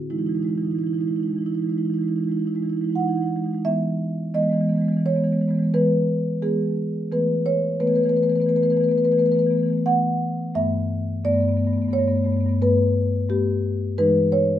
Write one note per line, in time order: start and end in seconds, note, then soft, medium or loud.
0.10 0.20 E3 soft
0.10 0.19 G#3 soft
0.10 0.17 D#4 soft
0.10 0.18 E4 soft
0.17 0.29 E3 soft
0.17 0.28 G#3 soft
0.17 0.25 D#4 soft
0.17 0.26 E4 soft
0.25 0.38 E3 soft
0.25 0.35 G#3 soft
0.25 0.33 D#4 soft
0.25 0.35 E4 soft
0.33 0.44 G#3 soft
0.33 0.40 D#4 soft
0.33 0.42 E4 soft
0.38 0.49 E3 soft
0.38 0.47 D#4 soft
0.42 0.53 G#3 soft
0.42 0.50 E4 soft
0.47 0.58 E3 soft
0.47 0.55 D#4 soft
0.47 0.58 E4 soft
0.53 0.62 G#3 soft
0.53 0.63 D#4 soft
0.58 0.67 E3 soft
0.58 0.65 E4 soft
0.62 0.72 G#3 soft
0.62 0.70 D#4 soft
0.62 0.71 E4 soft
0.67 0.75 E3 soft
0.67 0.78 D#4 soft
0.71 0.83 E3 soft
0.71 0.81 G#3 soft
0.71 0.79 E4 soft
0.78 0.90 G#3 soft
0.78 0.84 D#4 soft
0.78 0.87 E4 soft
0.83 0.93 E3 soft
0.83 0.91 D#4 soft
0.83 0.94 E4 soft
0.90 1.02 E3 soft
0.90 0.98 G#3 soft
0.90 0.99 D#4 soft
0.94 1.01 E4 soft
0.98 1.11 E3 soft
0.98 1.07 G#3 soft
0.98 1.05 D#4 soft
0.98 1.08 E4 soft
1.05 1.16 G#3 soft
1.05 1.13 D#4 soft
1.05 1.16 E4 soft
1.11 1.20 E3 soft
1.11 1.20 D#4 soft
1.16 1.29 E3 soft
1.16 1.26 G#3 soft
1.16 1.28 D#4 soft
1.16 1.23 E4 soft
1.23 1.34 G#3 soft
1.23 1.31 E4 soft
1.28 1.36 E3 soft
1.28 1.35 D#4 soft
1.28 1.38 E4 soft
1.34 1.45 E3 soft
1.34 1.42 G#3 soft
1.34 1.42 D#4 soft
1.38 1.52 G#3 soft
1.38 1.50 D#4 soft
1.38 1.46 E4 soft
1.45 1.55 E3 soft
1.45 1.54 E4 soft
1.50 1.59 G#3 soft
1.50 1.57 D#4 soft
1.54 1.64 E3 soft
1.54 1.65 D#4 soft
1.54 1.62 E4 soft
1.59 1.67 G#3 soft
1.59 1.70 E4 soft
1.64 1.72 E3 soft
1.64 1.77 G#3 soft
1.64 1.72 D#4 soft
1.70 1.81 E3 soft
1.70 1.79 D#4 soft
1.70 1.78 E4 soft
1.77 1.85 G#3 soft
1.77 1.86 D#4 soft
1.77 1.85 E4 soft
1.81 1.90 E3 soft
1.81 1.95 G#3 soft
1.81 1.94 E4 soft
1.86 1.94 D#4 soft
1.90 1.99 E3 soft
1.90 2.01 E4 soft
1.94 2.03 G#3 soft
1.94 2.01 D#4 soft
1.99 2.09 E3 soft
1.99 2.08 D#4 soft
1.99 2.08 E4 soft
2.03 2.12 G#3 soft
2.08 2.18 E3 soft
2.08 2.16 D#4 soft
2.08 2.16 E4 soft
2.12 2.20 G#3 soft
2.12 2.23 D#4 soft
2.12 2.24 E4 soft
2.18 2.28 E3 soft
2.18 2.29 G#3 soft
2.23 2.30 D#4 soft
2.23 2.32 E4 soft
2.28 2.37 E3 soft
2.28 2.39 G#3 soft
2.28 2.38 D#4 soft
2.32 2.40 E4 soft
2.37 2.45 E3 soft
2.37 2.47 G#3 soft
2.37 2.45 D#4 soft
2.37 2.47 E4 soft
2.45 2.54 E3 soft
2.45 2.56 G#3 soft
2.45 2.52 D#4 soft
2.45 2.55 E4 soft
2.52 2.64 E3 soft
2.52 2.65 G#3 soft
2.52 2.59 D#4 soft
2.52 2.63 E4 soft
2.59 2.66 D#4 soft
2.59 2.70 E4 soft
2.64 2.73 E3 soft
2.64 2.73 G#3 soft
2.64 2.74 D#4 soft
2.70 2.81 E3 soft
2.70 2.81 G#3 soft
2.70 2.77 E4 soft
2.74 2.82 D#4 soft
2.74 2.84 E4 soft
2.81 2.91 E3 soft
2.81 2.90 G#3 soft
2.81 2.89 D#4 soft
2.81 2.92 E4 soft
2.89 3.00 E3 soft
2.89 2.97 G#3 soft
2.89 2.97 D#4 soft
2.89 3.00 E4 soft
2.95 3.04 G#3 soft
2.95 3.05 D#4 soft
2.95 3.63 F#5 medium
3.00 3.09 E3 soft
3.00 3.08 E4 soft
3.04 3.13 G#3 soft
3.04 3.13 D#4 soft
3.04 3.15 E4 soft
3.09 3.17 E3 soft
3.09 3.21 G#3 soft
3.09 3.20 D#4 soft
3.15 3.26 E3 soft
3.15 3.23 E4 soft
3.20 3.28 G#3 soft
3.20 3.27 D#4 soft
3.20 3.27 E4 soft
3.26 3.36 E3 soft
3.26 3.37 G#3 soft
3.26 3.35 D#4 soft
3.35 3.46 E3 soft
3.35 3.44 G#3 soft
3.35 3.44 D#4 soft
3.44 3.55 E3 soft
3.44 3.53 G#3 soft
3.44 3.51 D#4 soft
3.51 3.62 E3 soft
3.51 3.62 G#3 soft
3.51 3.58 D#4 soft
3.58 3.62 D#4 soft
3.65 4.33 E3 soft
3.65 4.33 G#3 soft
3.65 4.33 B3 soft
3.65 4.32 E5 medium
4.34 4.43 E3 soft
4.34 4.42 G#3 soft
4.34 4.42 B3 soft
4.34 5.01 D#5 medium
4.42 4.53 E3 soft
4.42 4.49 G#3 soft
4.42 4.51 B3 soft
4.49 4.61 E3 soft
4.49 4.58 G#3 soft
4.49 4.61 B3 soft
4.58 4.70 E3 soft
4.58 4.65 G#3 soft
4.58 4.69 B3 soft
4.65 4.74 G#3 soft
4.69 4.78 E3 soft
4.69 4.76 B3 soft
4.74 4.81 G#3 soft
4.74 4.85 B3 soft
4.78 4.88 E3 soft
4.78 4.90 G#3 soft
4.85 4.97 E3 soft
4.85 4.92 B3 soft
4.90 4.99 G#3 soft
4.90 5.00 B3 soft
4.97 5.05 E3 soft
4.97 5.07 G#3 soft
4.97 5.08 B3 soft
5.05 5.14 E3 soft
5.05 5.16 G#3 soft
5.05 5.16 B3 soft
5.05 5.72 C#5 medium
5.14 5.24 E3 soft
5.14 5.24 G#3 soft
5.14 5.24 B3 soft
5.24 5.32 E3 soft
5.24 5.33 G#3 soft
5.24 5.32 B3 soft
5.32 5.41 E3 soft
5.32 5.41 G#3 soft
5.32 5.39 B3 soft
5.39 5.51 E3 soft
5.39 5.49 G#3 soft
5.39 5.48 B3 soft
5.48 5.59 E3 soft
5.48 5.58 G#3 soft
5.48 5.55 B3 soft
5.55 5.69 G#3 soft
5.55 5.63 B3 soft
5.59 5.69 E3 soft
5.59 5.69 B3 soft
5.74 6.41 E3 medium
5.74 6.41 G#3 soft
5.74 6.41 B3 soft
5.74 6.40 B4 medium
6.42 7.10 E3 soft
6.42 7.10 G#3 soft
6.42 7.10 B3 soft
6.42 7.09 G#4 medium
7.12 7.79 E3 soft
7.12 7.79 A3 soft
7.12 7.79 B3 soft
7.12 7.45 B4 medium
7.46 7.79 C#5 medium
7.80 7.89 E3 soft
7.80 7.89 A3 soft
7.80 7.87 B3 soft
7.80 7.87 B4 medium
7.87 7.97 E3 soft
7.87 7.98 A3 soft
7.87 7.94 B3 soft
7.87 7.95 B4 medium
7.94 8.05 E3 soft
7.94 8.06 A3 soft
7.94 8.01 B3 soft
7.94 8.03 B4 medium
8.01 8.13 E3 soft
8.01 8.09 B3 soft
8.01 8.09 B4 soft
8.06 8.14 A3 soft
8.06 8.16 B3 soft
8.06 8.16 B4 medium
8.13 8.21 E3 soft
8.13 8.23 A3 soft
8.13 8.24 B3 soft
8.13 8.23 B4 medium
8.21 8.29 E3 soft
8.21 8.32 A3 soft
8.21 8.32 B3 soft
8.21 8.30 B4 medium
8.29 8.38 E3 soft
8.29 8.41 A3 soft
8.29 8.40 B3 soft
8.29 8.35 B4 soft
8.35 8.46 E3 soft
8.35 8.41 B4 medium
8.40 8.48 A3 soft
8.40 8.49 B3 soft
8.40 8.49 B4 medium
8.46 8.55 E3 soft
8.46 8.57 A3 soft
8.46 8.56 B3 soft
8.46 8.56 B4 medium
8.55 8.63 E3 soft
8.55 8.65 A3 soft
8.55 8.64 B3 soft
8.55 8.63 B4 medium
8.63 8.72 E3 soft
8.63 8.74 A3 soft
8.63 8.72 B3 soft
8.63 8.70 B4 medium
8.70 8.81 E3 soft
8.70 8.82 A3 soft
8.70 8.80 B3 soft
8.70 8.77 B4 soft
8.77 8.88 E3 soft
8.77 8.89 B3 soft
8.77 8.84 B4 medium
8.82 8.91 A3 soft
8.82 8.91 B4 soft
8.88 8.97 E3 soft
8.88 8.98 A3 soft
8.88 8.96 B3 soft
8.88 8.98 B4 medium
8.96 9.05 E3 soft
8.96 9.08 A3 soft
8.96 9.04 B3 soft
8.96 9.05 B4 medium
9.04 9.13 E3 soft
9.04 9.12 B3 soft
9.04 9.12 B4 medium
9.08 9.18 A3 soft
9.08 9.19 B3 soft
9.12 9.22 E3 soft
9.12 9.19 B4 medium
9.18 9.29 E3 soft
9.18 9.26 A3 soft
9.18 9.27 B3 soft
9.18 9.26 B4 medium
9.26 9.37 E3 soft
9.26 9.36 A3 soft
9.26 9.35 B3 soft
9.26 9.32 B4 soft
9.32 9.43 A3 soft
9.32 9.42 B3 soft
9.32 9.39 B4 medium
9.37 9.46 E3 soft
9.37 9.48 B4 soft
9.42 9.51 A3 soft
9.42 9.50 B3 soft
9.46 9.55 E3 soft
9.50 9.60 A3 soft
9.50 9.58 B3 soft
9.55 9.63 E3 soft
9.55 9.66 B3 soft
9.60 9.71 E3 soft
9.60 9.69 A3 soft
9.66 9.78 A3 soft
9.66 9.73 B3 soft
9.71 9.82 E3 soft
9.71 9.82 B3 soft
9.78 9.82 A3 soft
9.86 10.53 E3 soft
9.86 10.53 A3 soft
9.86 10.53 B3 soft
9.86 10.52 F#5 medium
10.55 11.22 G2 soft
10.55 11.21 A3 soft
10.55 11.22 B3 soft
10.55 11.21 E5 medium
11.25 11.35 G2 medium
11.25 11.33 A3 soft
11.25 11.33 B3 soft
11.25 11.90 D5 medium
11.33 11.46 G2 soft
11.33 11.43 A3 soft
11.33 11.40 B3 soft
11.40 11.51 A3 soft
11.40 11.49 B3 soft
11.46 11.57 G2 soft
11.46 11.57 B3 soft
11.51 11.60 A3 soft
11.57 11.67 G2 soft
11.57 11.68 A3 soft
11.57 11.65 B3 soft
11.65 11.78 G2 soft
11.65 11.76 A3 soft
11.65 11.73 B3 soft
11.73 11.84 A3 soft
11.73 11.82 B3 soft
11.78 11.88 G2 soft
11.78 11.91 B3 soft
11.84 11.98 G2 soft
11.84 11.93 A3 soft
11.91 12.01 A3 soft
11.91 11.98 B3 soft
11.91 12.59 C#5 medium
11.98 12.07 G2 soft
11.98 12.10 A3 soft
11.98 12.07 B3 soft
12.07 12.16 G2 soft
12.07 12.17 A3 soft
12.07 12.16 B3 soft
12.16 12.26 G2 soft
12.16 12.25 A3 soft
12.16 12.24 B3 soft
12.24 12.36 G2 soft
12.24 12.33 A3 soft
12.24 12.32 B3 soft
12.32 12.41 A3 soft
12.32 12.40 B3 soft
12.36 12.46 G2 soft
12.36 12.49 B3 soft
12.41 12.49 A3 soft
12.46 12.58 G2 soft
12.46 12.58 A3 soft
12.46 12.58 B3 soft
12.62 13.28 G2 medium
12.62 13.28 A3 soft
12.62 13.28 B3 soft
12.62 13.27 B4 medium
13.29 13.96 G2 soft
13.29 13.96 A3 soft
13.29 13.96 B3 soft
13.29 13.95 G4 medium
13.98 14.59 E3 medium
13.98 14.59 G#3 soft
13.98 14.59 D#4 soft
13.98 14.31 B4 medium
14.32 14.59 C#5 medium